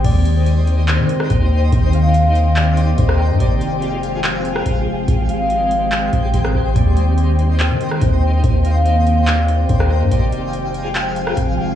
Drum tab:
CC |x---------------|----------------|----------------|----------------|
HH |x-x-x-x-x-x-x---|x-x-x-x-x-x-x---|x-x-x-x-x-x-x---|x-x-x-x-x-x-x---|
CP |--------x-------|--------x-------|--------x-------|--------x-------|
SD |-----------r----|-------------r--|-----------r----|-------------r--|
BD |o-----------o---|o-----------o---|o-----------o---|o---------o-o-o-|

CC |----------------|----------------|----------------|
HH |x-x-x-x-x-x-x---|x-x-x-x-x-x-x---|x-x-x-x-x-x-x---|
CP |--------x-------|--------x-------|--------x-------|
SD |-----------r----|-------------r--|-----------r----|
BD |o-----------o---|o-----------o---|o-----------o---|